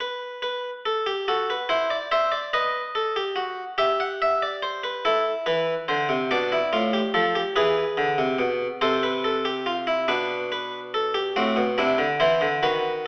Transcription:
0.00 0.41 B4 medium
0.42 0.69 B4 medium
0.86 1.06 A4 medium
1.06 1.27 G4 medium
1.28 1.54 F#4 medium
1.28 1.48 A4 medium
1.50 1.70 B4 medium
1.69 1.95 E4 medium
1.69 1.90 C5 medium
1.90 2.11 D5 medium
2.12 2.38 C5 medium
2.12 2.32 E5 medium
2.32 2.52 D5 medium
2.53 2.79 B4 medium
2.53 3.76 D#5 medium
2.95 3.16 A4 medium
3.16 3.37 G4 medium
3.36 3.62 F#4 medium
3.78 5.01 G4 medium
3.78 3.99 E5 medium
4.00 4.21 F#5 medium
4.22 4.42 E5 medium
4.42 4.63 D5 medium
4.63 4.84 C5 medium
4.84 5.05 B4 medium
5.05 6.27 E4 medium
5.05 5.31 A4 medium
5.46 5.73 E3 medium
5.46 5.73 B4 medium
5.88 6.09 D3 medium
5.88 6.15 C5 medium
6.09 6.30 C3 medium
6.31 6.57 B2 medium
6.31 6.51 D4 medium
6.31 7.53 D5 medium
6.52 6.73 E4 medium
6.73 6.99 A2 medium
6.73 6.93 F4 medium
6.93 7.14 G4 medium
7.14 7.41 F3 medium
7.14 7.35 A4 medium
7.35 7.56 G4 medium
7.56 7.82 E3 medium
7.56 8.79 G#4 medium
7.56 8.79 B4 medium
7.97 8.19 D3 medium
8.18 8.40 C3 medium
8.39 8.65 B2 medium
8.81 10.05 C3 medium
8.81 9.03 A4 medium
8.81 10.04 C5 medium
9.03 9.24 B4 medium
9.24 9.45 A4 medium
9.45 9.66 G4 medium
9.66 9.87 F4 medium
9.87 10.08 E4 medium
10.08 11.32 B2 medium
10.08 11.32 D4 medium
10.08 10.35 B4 medium
10.52 10.78 B4 medium
10.94 11.15 A4 medium
11.14 11.35 G4 medium
11.36 11.57 A2 medium
11.36 11.63 C4 medium
11.36 11.63 F#4 medium
11.56 11.78 B2 medium
11.78 11.99 C3 medium
11.78 12.04 D4 medium
11.78 12.05 E4 medium
11.98 12.20 D3 medium
12.20 12.41 E3 medium
12.20 12.47 E4 medium
12.20 12.47 C5 medium
12.41 12.62 D3 medium
12.63 13.07 D#3 medium
12.63 13.07 F#4 medium
12.63 12.89 B4 medium

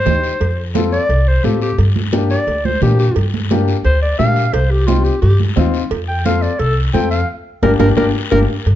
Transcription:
0.00 0.72 C5 loud
0.06 0.34 D#2 medium
0.06 0.30 D#4 medium
0.06 0.30 G4 medium
0.06 0.31 C5 medium
0.06 high conga medium
0.06 low conga medium
0.06 low timbale medium
0.06 short guiro medium
0.24 high conga soft
0.24 short guiro medium
0.41 0.96 F2 medium
0.41 cowbell medium
0.41 high conga soft
0.41 long guiro medium
0.74 0.99 C4 medium
0.74 0.99 F4 medium
0.74 0.99 A4 medium
0.74 high conga loud
0.74 short guiro medium
0.92 1.29 D5 loud
0.92 short guiro medium
1.09 1.37 C2 medium
1.09 cowbell medium
1.09 long guiro medium
1.28 1.46 C5 medium
1.43 1.71 A2 medium
1.43 1.68 C4 medium
1.43 1.68 F4 medium
1.43 1.61 G4 medium
1.43 1.68 A4 medium
1.43 high conga medium
1.43 short guiro medium
1.62 1.79 G4 medium
1.62 high conga soft
1.62 short guiro medium
1.78 2.33 G2 medium
1.78 cowbell medium
1.78 high conga soft
1.78 long guiro medium
1.96 high conga medium
2.13 2.37 A#3 medium
2.13 2.37 D4 medium
2.13 2.37 G4 medium
2.13 high conga loud
2.13 short guiro medium
2.30 2.67 D5 loud
2.30 short guiro medium
2.47 2.75 D2 medium
2.47 cowbell medium
2.47 long guiro medium
2.65 2.82 C5 loud
2.65 high conga medium
2.82 3.09 A#2 medium
2.82 3.06 A#3 medium
2.82 3.06 D4 medium
2.82 2.99 G4 medium
2.82 3.07 G4 medium
2.82 high conga medium
2.82 low conga medium
2.82 low timbale medium
2.82 short guiro medium
2.99 3.16 G4 medium
2.99 high conga soft
2.99 short guiro medium
3.16 3.71 G2 medium
3.16 cowbell medium
3.16 high conga soft
3.16 long guiro medium
3.34 high conga medium
3.51 3.75 A#3 medium
3.51 3.75 D4 medium
3.51 3.75 G4 medium
3.51 high conga medium
3.51 short guiro medium
3.68 short guiro medium
3.84 4.12 D2 medium
3.84 4.01 C5 loud
3.84 cowbell medium
3.84 long guiro medium
4.02 4.18 D5 medium
4.19 4.47 A#2 medium
4.19 4.43 A#3 medium
4.19 4.44 D4 medium
4.19 4.43 G4 medium
4.19 4.55 F5 loud
4.19 high conga medium
4.19 short guiro medium
4.36 high conga soft
4.36 short guiro medium
4.53 5.08 C2 medium
4.53 4.72 C5 medium
4.53 cowbell loud
4.53 high conga soft
4.53 long guiro medium
4.71 4.88 G4 medium
4.87 5.12 C4 medium
4.87 5.12 D#4 medium
4.87 5.06 F4 medium
4.87 5.12 G4 medium
4.87 high conga medium
4.87 short guiro medium
5.04 5.21 G4 medium
5.04 short guiro medium
5.21 5.50 G2 medium
5.21 5.39 G4 loud
5.21 cowbell medium
5.21 long guiro medium
5.40 high conga medium
5.56 5.84 D#2 medium
5.56 5.81 C4 medium
5.56 5.81 D#4 medium
5.56 5.81 F4 medium
5.56 high conga medium
5.56 low conga medium
5.56 low timbale medium
5.56 short guiro medium
5.74 high conga soft
5.74 short guiro medium
5.91 6.46 F2 medium
5.91 cowbell loud
5.91 high conga soft
5.91 long guiro medium
6.08 6.25 G5 medium
6.25 6.50 C4 medium
6.25 6.50 F4 medium
6.25 6.50 A4 medium
6.25 6.44 F5 medium
6.25 high conga medium
6.25 short guiro medium
6.42 6.61 D5 medium
6.42 short guiro medium
6.59 6.87 C2 medium
6.59 6.76 A4 loud
6.59 cowbell medium
6.59 long guiro medium
6.94 7.21 F2 medium
6.94 7.18 C4 medium
6.94 7.18 F4 medium
6.94 7.18 A4 medium
6.94 7.10 G5 medium
6.94 high conga medium
6.94 short guiro medium
7.11 7.28 F5 medium
7.11 high conga soft
7.11 short guiro medium
7.62 7.76 G1 loud
7.62 7.74 A#3 medium
7.62 7.74 D4 medium
7.62 7.74 G4 medium
7.62 7.71 A#4 medium
7.62 high conga loud
7.62 high timbale loud
7.62 long guiro loud
7.79 7.93 G1 loud
7.79 7.91 A#3 loud
7.79 7.91 D4 loud
7.79 7.91 G4 medium
7.79 7.88 A#4 loud
7.79 high conga medium
7.79 high timbale loud
7.79 long guiro loud
7.97 8.10 G1 medium
7.97 8.08 A#3 loud
7.97 8.08 D4 loud
7.97 8.08 G4 loud
7.97 8.05 A#4 medium
7.97 high conga medium
7.97 high timbale medium
7.97 long guiro loud
8.31 8.45 G1 loud
8.31 8.43 A#3 medium
8.31 8.43 D4 medium
8.31 8.43 G4 medium
8.31 8.40 A#4 loud
8.31 high conga loud
8.31 high timbale medium
8.31 long guiro loud
8.66 8.75 G2 medium
8.66 cowbell medium
8.66 high conga soft
8.66 long guiro medium

